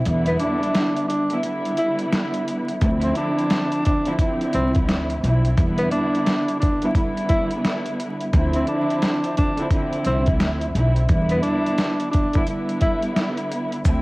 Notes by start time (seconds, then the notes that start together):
0.05 E2 D3 G3 B3 E4, closed hi-hat
0.26 B3, closed hi-hat
0.39 D4, closed hi-hat
0.63 closed hi-hat
0.75 snare, closed hi-hat
0.97 closed hi-hat
1.08 D4, closed hi-hat
1.30 D3 G3 B3 E4, closed hi-hat
1.42 D3 G3 B3 E4, closed hi-hat
1.65 closed hi-hat
1.77 E4, closed hi-hat
1.99 closed hi-hat
2.12 snare, closed hi-hat
2.34 closed hi-hat
2.48 closed hi-hat
2.68 closed hi-hat
2.80 D2 D3 F3 C4 E4, kick, closed hi-hat
3.01 C4, closed hi-hat
3.15 D4, closed hi-hat
3.39 closed hi-hat
3.50 snare, closed hi-hat
3.72 closed hi-hat
3.85 D4, kick, closed hi-hat
4.05 D3 F3 C4 E4, closed hi-hat
4.18 D3 F3 C4 E4, kick, closed hi-hat
4.41 closed hi-hat
4.53 C2 C4, closed hi-hat
4.75 kick, closed hi-hat
4.89 D2, snare, closed hi-hat
5.10 closed hi-hat
5.23 B1 D3 F3 C4 E4, closed hi-hat
5.45 closed hi-hat
5.57 E2 D3 G3 B3 E4, kick, closed hi-hat
5.78 B3, closed hi-hat
5.91 D4, closed hi-hat
6.15 closed hi-hat
6.26 snare, closed hi-hat
6.48 closed hi-hat
6.60 D4, kick, closed hi-hat
6.81 D3 G3 B3 E4, closed hi-hat
6.94 D3 G3 B3 E4, kick, closed hi-hat
7.17 closed hi-hat
7.29 E4, kick, closed hi-hat
7.51 closed hi-hat
7.65 snare, closed hi-hat
7.86 closed hi-hat
8.00 closed hi-hat
8.20 closed hi-hat
8.32 D2 D3 F3 C4 E4, kick, closed hi-hat
8.53 C4, closed hi-hat
8.67 D4, closed hi-hat
8.90 closed hi-hat
9.02 snare, closed hi-hat
9.24 closed hi-hat
9.37 D4, kick, closed hi-hat
9.56 D3 F3 C4 E4, closed hi-hat
9.70 D3 F3 C4 E4, kick, closed hi-hat
9.93 closed hi-hat
10.05 C2 C4, closed hi-hat
10.26 kick, closed hi-hat
10.40 D2, snare, closed hi-hat
10.61 closed hi-hat
10.74 B1 D3 F3 C4 E4, closed hi-hat
10.96 closed hi-hat
11.08 E2 D3 G3 B3 E4, kick, closed hi-hat
11.29 B3, closed hi-hat
11.42 D4, closed hi-hat
11.66 closed hi-hat
11.78 snare, closed hi-hat
12.00 closed hi-hat
12.11 D4, kick, closed hi-hat
12.33 D3 G3 B3 E4, kick, closed hi-hat
12.45 D3 G3 B3 E4, closed hi-hat
12.69 closed hi-hat
12.81 E4, kick, closed hi-hat
13.02 closed hi-hat
13.16 snare, closed hi-hat
13.37 closed hi-hat
13.51 closed hi-hat
13.72 closed hi-hat
13.83 D2 D3 F3 C4 E4, kick, closed hi-hat, maracas